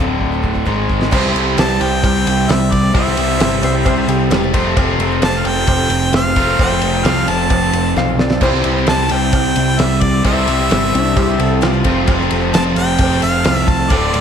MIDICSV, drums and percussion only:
0, 0, Header, 1, 2, 480
1, 0, Start_track
1, 0, Tempo, 456621
1, 1177, Time_signature, 4, 2, 24, 8
1, 14933, End_track
2, 0, Start_track
2, 0, Title_t, "Drums"
2, 221, Note_on_c, 9, 36, 52
2, 326, Note_off_c, 9, 36, 0
2, 460, Note_on_c, 9, 36, 63
2, 565, Note_off_c, 9, 36, 0
2, 581, Note_on_c, 9, 36, 54
2, 687, Note_off_c, 9, 36, 0
2, 699, Note_on_c, 9, 36, 72
2, 804, Note_off_c, 9, 36, 0
2, 941, Note_on_c, 9, 36, 77
2, 1046, Note_off_c, 9, 36, 0
2, 1072, Note_on_c, 9, 38, 73
2, 1177, Note_off_c, 9, 38, 0
2, 1179, Note_on_c, 9, 56, 80
2, 1182, Note_on_c, 9, 36, 116
2, 1182, Note_on_c, 9, 49, 120
2, 1284, Note_off_c, 9, 56, 0
2, 1287, Note_off_c, 9, 49, 0
2, 1288, Note_off_c, 9, 36, 0
2, 1319, Note_on_c, 9, 38, 39
2, 1424, Note_off_c, 9, 38, 0
2, 1428, Note_on_c, 9, 51, 73
2, 1533, Note_off_c, 9, 51, 0
2, 1658, Note_on_c, 9, 56, 71
2, 1661, Note_on_c, 9, 51, 106
2, 1673, Note_on_c, 9, 38, 115
2, 1763, Note_off_c, 9, 56, 0
2, 1766, Note_off_c, 9, 51, 0
2, 1778, Note_off_c, 9, 38, 0
2, 1899, Note_on_c, 9, 56, 62
2, 1901, Note_on_c, 9, 51, 65
2, 2004, Note_off_c, 9, 56, 0
2, 2006, Note_off_c, 9, 51, 0
2, 2138, Note_on_c, 9, 56, 86
2, 2141, Note_on_c, 9, 36, 109
2, 2144, Note_on_c, 9, 51, 93
2, 2244, Note_off_c, 9, 56, 0
2, 2246, Note_off_c, 9, 36, 0
2, 2249, Note_off_c, 9, 51, 0
2, 2386, Note_on_c, 9, 51, 80
2, 2491, Note_off_c, 9, 51, 0
2, 2616, Note_on_c, 9, 56, 71
2, 2620, Note_on_c, 9, 51, 92
2, 2633, Note_on_c, 9, 38, 104
2, 2721, Note_off_c, 9, 56, 0
2, 2726, Note_off_c, 9, 51, 0
2, 2738, Note_off_c, 9, 38, 0
2, 2860, Note_on_c, 9, 36, 91
2, 2862, Note_on_c, 9, 51, 83
2, 2965, Note_off_c, 9, 36, 0
2, 2967, Note_off_c, 9, 51, 0
2, 3093, Note_on_c, 9, 56, 92
2, 3098, Note_on_c, 9, 51, 96
2, 3099, Note_on_c, 9, 36, 121
2, 3198, Note_off_c, 9, 56, 0
2, 3203, Note_off_c, 9, 51, 0
2, 3204, Note_off_c, 9, 36, 0
2, 3232, Note_on_c, 9, 38, 35
2, 3335, Note_on_c, 9, 51, 71
2, 3337, Note_off_c, 9, 38, 0
2, 3440, Note_off_c, 9, 51, 0
2, 3568, Note_on_c, 9, 56, 72
2, 3577, Note_on_c, 9, 51, 103
2, 3589, Note_on_c, 9, 38, 117
2, 3673, Note_off_c, 9, 56, 0
2, 3682, Note_off_c, 9, 51, 0
2, 3694, Note_off_c, 9, 38, 0
2, 3810, Note_on_c, 9, 56, 65
2, 3816, Note_on_c, 9, 51, 78
2, 3915, Note_off_c, 9, 56, 0
2, 3921, Note_off_c, 9, 51, 0
2, 4050, Note_on_c, 9, 56, 97
2, 4057, Note_on_c, 9, 36, 118
2, 4057, Note_on_c, 9, 51, 113
2, 4155, Note_off_c, 9, 56, 0
2, 4162, Note_off_c, 9, 36, 0
2, 4162, Note_off_c, 9, 51, 0
2, 4295, Note_on_c, 9, 51, 83
2, 4400, Note_off_c, 9, 51, 0
2, 4527, Note_on_c, 9, 56, 82
2, 4532, Note_on_c, 9, 51, 104
2, 4545, Note_on_c, 9, 38, 104
2, 4632, Note_off_c, 9, 56, 0
2, 4637, Note_off_c, 9, 51, 0
2, 4650, Note_off_c, 9, 38, 0
2, 4772, Note_on_c, 9, 51, 90
2, 4774, Note_on_c, 9, 36, 100
2, 4877, Note_off_c, 9, 51, 0
2, 4879, Note_off_c, 9, 36, 0
2, 5010, Note_on_c, 9, 56, 104
2, 5012, Note_on_c, 9, 51, 111
2, 5014, Note_on_c, 9, 36, 113
2, 5115, Note_off_c, 9, 56, 0
2, 5117, Note_off_c, 9, 51, 0
2, 5119, Note_off_c, 9, 36, 0
2, 5253, Note_on_c, 9, 51, 79
2, 5358, Note_off_c, 9, 51, 0
2, 5486, Note_on_c, 9, 51, 107
2, 5491, Note_on_c, 9, 56, 81
2, 5499, Note_on_c, 9, 38, 117
2, 5591, Note_off_c, 9, 51, 0
2, 5596, Note_off_c, 9, 56, 0
2, 5604, Note_off_c, 9, 38, 0
2, 5726, Note_on_c, 9, 56, 64
2, 5728, Note_on_c, 9, 51, 77
2, 5831, Note_off_c, 9, 56, 0
2, 5833, Note_off_c, 9, 51, 0
2, 5963, Note_on_c, 9, 51, 101
2, 5970, Note_on_c, 9, 36, 112
2, 5974, Note_on_c, 9, 56, 90
2, 6068, Note_off_c, 9, 51, 0
2, 6075, Note_off_c, 9, 36, 0
2, 6079, Note_off_c, 9, 56, 0
2, 6201, Note_on_c, 9, 51, 82
2, 6306, Note_off_c, 9, 51, 0
2, 6444, Note_on_c, 9, 51, 86
2, 6454, Note_on_c, 9, 56, 67
2, 6456, Note_on_c, 9, 38, 123
2, 6549, Note_off_c, 9, 51, 0
2, 6560, Note_off_c, 9, 56, 0
2, 6561, Note_off_c, 9, 38, 0
2, 6687, Note_on_c, 9, 51, 81
2, 6691, Note_on_c, 9, 36, 96
2, 6792, Note_off_c, 9, 51, 0
2, 6796, Note_off_c, 9, 36, 0
2, 6930, Note_on_c, 9, 51, 89
2, 6931, Note_on_c, 9, 36, 118
2, 6937, Note_on_c, 9, 56, 91
2, 7035, Note_off_c, 9, 51, 0
2, 7036, Note_off_c, 9, 36, 0
2, 7042, Note_off_c, 9, 56, 0
2, 7061, Note_on_c, 9, 38, 33
2, 7164, Note_on_c, 9, 51, 75
2, 7166, Note_off_c, 9, 38, 0
2, 7269, Note_off_c, 9, 51, 0
2, 7409, Note_on_c, 9, 51, 104
2, 7414, Note_on_c, 9, 56, 65
2, 7422, Note_on_c, 9, 38, 111
2, 7515, Note_off_c, 9, 51, 0
2, 7519, Note_off_c, 9, 56, 0
2, 7527, Note_off_c, 9, 38, 0
2, 7650, Note_on_c, 9, 56, 63
2, 7651, Note_on_c, 9, 51, 80
2, 7755, Note_off_c, 9, 56, 0
2, 7756, Note_off_c, 9, 51, 0
2, 7885, Note_on_c, 9, 51, 106
2, 7888, Note_on_c, 9, 36, 118
2, 7891, Note_on_c, 9, 56, 86
2, 7990, Note_off_c, 9, 51, 0
2, 7994, Note_off_c, 9, 36, 0
2, 7996, Note_off_c, 9, 56, 0
2, 8129, Note_on_c, 9, 51, 79
2, 8235, Note_off_c, 9, 51, 0
2, 8376, Note_on_c, 9, 56, 62
2, 8377, Note_on_c, 9, 38, 64
2, 8481, Note_off_c, 9, 56, 0
2, 8483, Note_off_c, 9, 38, 0
2, 8614, Note_on_c, 9, 38, 103
2, 8719, Note_off_c, 9, 38, 0
2, 8731, Note_on_c, 9, 38, 101
2, 8837, Note_off_c, 9, 38, 0
2, 8838, Note_on_c, 9, 49, 99
2, 8847, Note_on_c, 9, 36, 123
2, 8857, Note_on_c, 9, 56, 88
2, 8943, Note_off_c, 9, 49, 0
2, 8952, Note_off_c, 9, 36, 0
2, 8962, Note_off_c, 9, 56, 0
2, 8976, Note_on_c, 9, 38, 35
2, 9080, Note_on_c, 9, 51, 80
2, 9081, Note_off_c, 9, 38, 0
2, 9185, Note_off_c, 9, 51, 0
2, 9320, Note_on_c, 9, 51, 95
2, 9331, Note_on_c, 9, 56, 63
2, 9332, Note_on_c, 9, 38, 116
2, 9425, Note_off_c, 9, 51, 0
2, 9436, Note_off_c, 9, 56, 0
2, 9437, Note_off_c, 9, 38, 0
2, 9559, Note_on_c, 9, 51, 81
2, 9575, Note_on_c, 9, 56, 62
2, 9664, Note_off_c, 9, 51, 0
2, 9680, Note_off_c, 9, 56, 0
2, 9804, Note_on_c, 9, 51, 102
2, 9808, Note_on_c, 9, 36, 113
2, 9808, Note_on_c, 9, 56, 82
2, 9909, Note_off_c, 9, 51, 0
2, 9913, Note_off_c, 9, 36, 0
2, 9913, Note_off_c, 9, 56, 0
2, 10047, Note_on_c, 9, 51, 80
2, 10152, Note_off_c, 9, 51, 0
2, 10287, Note_on_c, 9, 51, 96
2, 10295, Note_on_c, 9, 56, 78
2, 10300, Note_on_c, 9, 38, 108
2, 10392, Note_off_c, 9, 51, 0
2, 10400, Note_off_c, 9, 56, 0
2, 10405, Note_off_c, 9, 38, 0
2, 10525, Note_on_c, 9, 51, 83
2, 10532, Note_on_c, 9, 36, 101
2, 10630, Note_off_c, 9, 51, 0
2, 10637, Note_off_c, 9, 36, 0
2, 10768, Note_on_c, 9, 51, 99
2, 10774, Note_on_c, 9, 36, 116
2, 10777, Note_on_c, 9, 56, 88
2, 10874, Note_off_c, 9, 51, 0
2, 10879, Note_off_c, 9, 36, 0
2, 10882, Note_off_c, 9, 56, 0
2, 11013, Note_on_c, 9, 51, 77
2, 11118, Note_off_c, 9, 51, 0
2, 11257, Note_on_c, 9, 56, 75
2, 11259, Note_on_c, 9, 51, 96
2, 11271, Note_on_c, 9, 38, 120
2, 11362, Note_off_c, 9, 56, 0
2, 11364, Note_off_c, 9, 51, 0
2, 11376, Note_off_c, 9, 38, 0
2, 11510, Note_on_c, 9, 51, 80
2, 11615, Note_off_c, 9, 51, 0
2, 11738, Note_on_c, 9, 51, 108
2, 11739, Note_on_c, 9, 56, 85
2, 11740, Note_on_c, 9, 36, 116
2, 11843, Note_off_c, 9, 51, 0
2, 11844, Note_off_c, 9, 56, 0
2, 11845, Note_off_c, 9, 36, 0
2, 11979, Note_on_c, 9, 51, 81
2, 12085, Note_off_c, 9, 51, 0
2, 12215, Note_on_c, 9, 51, 104
2, 12222, Note_on_c, 9, 56, 76
2, 12228, Note_on_c, 9, 38, 108
2, 12320, Note_off_c, 9, 51, 0
2, 12327, Note_off_c, 9, 56, 0
2, 12333, Note_off_c, 9, 38, 0
2, 12452, Note_on_c, 9, 51, 88
2, 12457, Note_on_c, 9, 36, 105
2, 12557, Note_off_c, 9, 51, 0
2, 12562, Note_off_c, 9, 36, 0
2, 12693, Note_on_c, 9, 51, 118
2, 12698, Note_on_c, 9, 36, 127
2, 12704, Note_on_c, 9, 56, 105
2, 12798, Note_off_c, 9, 51, 0
2, 12803, Note_off_c, 9, 36, 0
2, 12809, Note_off_c, 9, 56, 0
2, 12829, Note_on_c, 9, 38, 41
2, 12934, Note_off_c, 9, 38, 0
2, 12936, Note_on_c, 9, 51, 82
2, 13041, Note_off_c, 9, 51, 0
2, 13180, Note_on_c, 9, 51, 122
2, 13183, Note_on_c, 9, 56, 68
2, 13192, Note_on_c, 9, 38, 127
2, 13285, Note_off_c, 9, 51, 0
2, 13288, Note_off_c, 9, 56, 0
2, 13297, Note_off_c, 9, 38, 0
2, 13416, Note_on_c, 9, 51, 83
2, 13429, Note_on_c, 9, 56, 67
2, 13521, Note_off_c, 9, 51, 0
2, 13534, Note_off_c, 9, 56, 0
2, 13650, Note_on_c, 9, 51, 122
2, 13658, Note_on_c, 9, 36, 124
2, 13672, Note_on_c, 9, 56, 88
2, 13755, Note_off_c, 9, 51, 0
2, 13763, Note_off_c, 9, 36, 0
2, 13777, Note_off_c, 9, 56, 0
2, 13897, Note_on_c, 9, 51, 81
2, 14002, Note_off_c, 9, 51, 0
2, 14133, Note_on_c, 9, 51, 108
2, 14145, Note_on_c, 9, 38, 119
2, 14147, Note_on_c, 9, 56, 75
2, 14238, Note_off_c, 9, 51, 0
2, 14250, Note_off_c, 9, 38, 0
2, 14252, Note_off_c, 9, 56, 0
2, 14379, Note_on_c, 9, 36, 106
2, 14380, Note_on_c, 9, 51, 80
2, 14484, Note_off_c, 9, 36, 0
2, 14485, Note_off_c, 9, 51, 0
2, 14613, Note_on_c, 9, 51, 105
2, 14618, Note_on_c, 9, 36, 108
2, 14621, Note_on_c, 9, 56, 105
2, 14718, Note_off_c, 9, 51, 0
2, 14723, Note_off_c, 9, 36, 0
2, 14726, Note_off_c, 9, 56, 0
2, 14862, Note_on_c, 9, 51, 75
2, 14933, Note_off_c, 9, 51, 0
2, 14933, End_track
0, 0, End_of_file